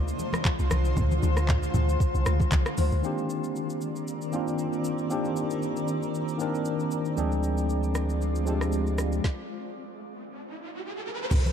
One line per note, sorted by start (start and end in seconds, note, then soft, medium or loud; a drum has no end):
0.00 0.13 D2 loud
0.00 3.00 D3 medium
0.00 3.00 G#3 medium
0.00 3.00 F4 medium
0.00 3.00 C5 medium
0.08 shaker medium
0.19 high conga medium
0.19 shaker medium
0.33 cross-stick loud
0.33 high conga medium
0.33 shaker medium
0.45 kick loud
0.45 clap loud
0.45 high conga medium
0.45 shaker medium
0.59 0.70 C2 medium
0.59 shaker medium
0.71 0.94 C2 loud
0.71 cross-stick loud
0.71 high conga medium
0.71 shaker loud
0.85 shaker soft
0.97 1.19 D2 loud
0.97 kick loud
0.97 low conga medium
0.97 shaker medium
1.11 high conga medium
1.11 shaker soft
1.23 1.68 D2 loud
1.23 high conga medium
1.23 shaker medium
1.37 cross-stick medium
1.37 shaker medium
1.49 kick medium
1.49 clap medium
1.49 low conga medium
1.49 shaker medium
1.63 shaker medium
1.74 1.97 D2 loud
1.74 high conga medium
1.74 low conga medium
1.74 shaker medium
1.89 shaker medium
2.00 kick loud
2.00 shaker medium
2.14 2.25 C2 medium
2.14 shaker medium
2.26 2.39 D2 medium
2.26 cross-stick loud
2.26 shaker medium
2.40 kick medium
2.40 high conga medium
2.40 shaker medium
2.52 2.64 C2 medium
2.52 kick loud
2.52 clap loud
2.52 high conga medium
2.52 shaker medium
2.66 cross-stick loud
2.66 shaker medium
2.78 2.90 D2 medium
2.78 open hi-hat medium
2.78 high conga medium
2.78 shaker loud
2.92 3.02 D2 medium
2.92 shaker soft
3.02 3.86 D#3 medium
3.02 7.14 D#3 medium
3.02 3.87 A#3 medium
3.02 9.20 C4 medium
3.02 3.87 C4 medium
3.02 3.88 D4 medium
3.02 3.88 G4 medium
3.02 7.13 A#4 medium
3.02 9.20 D5 medium
3.02 shaker medium
3.18 shaker soft
3.30 shaker medium
3.44 shaker medium
3.56 shaker medium
3.70 shaker soft
3.81 shaker medium
3.96 shaker medium
4.08 shaker medium
4.21 shaker medium
4.32 4.95 D#3 medium
4.32 4.96 A#3 medium
4.32 4.96 C4 medium
4.32 4.97 D4 medium
4.32 4.97 F4 medium
4.32 shaker medium
4.48 shaker soft
4.58 shaker medium
4.73 shaker soft
4.84 shaker loud
4.98 shaker soft
5.09 5.93 D#3 medium
5.09 5.94 A#3 medium
5.09 5.94 C4 medium
5.09 5.95 D4 medium
5.09 5.95 G4 medium
5.09 shaker medium
5.25 shaker soft
5.36 shaker medium
5.50 shaker medium
5.62 shaker medium
5.77 shaker medium
5.88 shaker medium
6.03 shaker medium
6.15 shaker medium
6.28 shaker medium
6.38 7.02 D#3 medium
6.38 7.02 A#3 medium
6.38 7.03 C4 medium
6.38 7.04 D4 medium
6.38 7.04 A#4 medium
6.38 shaker medium
6.55 shaker soft
6.65 shaker medium
6.80 shaker soft
6.91 shaker medium
7.05 shaker soft
7.16 9.20 D2 medium
7.16 8.00 F3 medium
7.16 8.00 G#3 medium
7.16 9.22 G#3 medium
7.16 8.01 C4 medium
7.16 8.01 D4 medium
7.16 9.22 F4 medium
7.16 8.02 G#4 medium
7.16 shaker medium
7.32 shaker soft
7.43 shaker medium
7.58 shaker medium
7.69 shaker medium
7.83 shaker medium
7.95 cross-stick medium
7.95 shaker medium
8.10 shaker medium
8.22 shaker medium
8.35 shaker medium
8.45 9.09 F3 medium
8.45 9.10 G#3 medium
8.45 9.10 C4 medium
8.45 9.11 D4 medium
8.45 9.11 G4 medium
8.45 shaker medium
8.61 cross-stick medium
8.61 shaker medium
8.72 shaker medium
8.87 shaker soft
8.98 cross-stick loud
8.98 shaker medium
9.12 shaker soft
9.24 kick loud
9.24 snare medium
9.24 riser medium
11.31 11.52 C2 loud
11.31 kick loud
11.31 crash loud
11.31 low conga medium
11.31 shaker medium
11.46 high conga medium
11.46 shaker soft